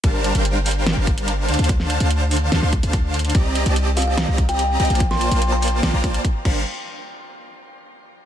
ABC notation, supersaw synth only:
X:1
M:4/4
L:1/16
Q:1/4=145
K:Gm
V:1 name="Supersaw synth"
[G,DBcfa]3 [G,DBcfg]6 [G,DBcfa]4- [G,DBcfa] [D,Dcfa] [D,Dcfa]- | [D,Dcfa]3 [D,Dcfa]4- [D,Dcfa] [D,Dcfa] [D,Dcfc'] z [D,Dcfa]4- [D,Dcfa] | [CGdeb]3 [CGdea]6 [CGdeb]4- [CGdeb] [CGdeb] [B,Fcda]- | [B,Fcda]3 [B,Fcda]4- [B,Fcda] [B,Fcda] [B,Fcdb] [B,Fcda]2 z2 [G,DBcfa]2 |
z16 |]